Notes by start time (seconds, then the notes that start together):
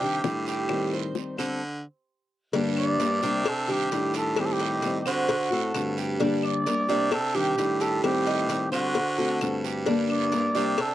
Already playing: C3 G4
0.01 D#3 G3 D4 G4
0.24 A2 D#3 G3 D4 G4, high bongo, low bongo, short guiro
0.47 G4, short guiro
0.69 D#3 G3 C4, high bongo, long guiro, claves
0.93 C5, high bongo
1.15 D#3 G3 C4, high bongo, short guiro
1.38 D3 G3 C4 A4, high bongo, short guiro, claves
2.53 G2 D3 G3 A#3 D4 G4, cowbell, long guiro
2.77 D5, claves
2.98 G3 A#3 D4 G4 A#4, cowbell, short guiro
3.22 C3 G3 A#3 D4 G4, short guiro
3.45 A4, muted nylon-string guitar stroke, cowbell, long guiro, claves
3.68 D#3 G3 D4 G4
3.91 A2 D#3 G3 D4 G4, cowbell, short guiro
4.14 G4 A4, cowbell, short guiro
4.36 D#3 G3 C4 G4, cowbell, long guiro, claves
4.45 A4
4.53 G4
4.60 D#4, cowbell
4.82 D#3 G3 C4, cowbell, short guiro
5.01 G4
5.05 D3 G3 C4 F#4 C5, short guiro, claves
5.28 muted nylon-string guitar stroke, cowbell, long guiro
5.50 A2 A3 C4 F#4 A4
5.74 G2 D3 A3 C4 F#4, cowbell, short guiro, claves
5.98 G4, short guiro
6.20 D3 G3 A#3 D4 G4, cowbell, long guiro
6.43 D5, claves
6.66 G3 A#3 D4 G4 A#4, cowbell, short guiro
6.89 C3 G3 A#3 D4 G4, short guiro
7.12 A4, muted nylon-string guitar stroke, cowbell, long guiro, claves
7.35 D#3 G3 D4 G4
7.57 A2 D#3 G3 D4 G4, cowbell, short guiro
7.80 G4 A4, cowbell, short guiro
8.02 D#3 G3 C4 G4, cowbell, long guiro, claves
8.26 D#4, cowbell
8.49 D#3 G3 C4, cowbell, short guiro
8.72 D3 G3 C4 F#4 C5, short guiro, claves
8.95 muted nylon-string guitar stroke, cowbell, long guiro
9.18 A3 C4 F#4 A4
9.41 G2 D3 A3 C4 F#4, cowbell, short guiro, claves
9.64 G4, short guiro
9.86 D3 G3 A#3 D4 G4, cowbell, long guiro
10.10 D5, claves
10.32 G3 A#3 D4 G4 A#4, cowbell, short guiro
10.55 C3 G3 A#3 D4 G4, short guiro
10.78 A4, muted nylon-string guitar stroke, cowbell, long guiro, claves